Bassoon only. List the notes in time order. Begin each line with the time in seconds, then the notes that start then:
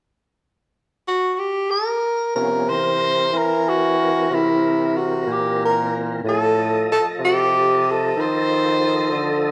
2.36 C3
3.33 E3
4.30 C3
5.27 A#2
6.24 A2
7.19 C3
8.17 D#3
9.12 D3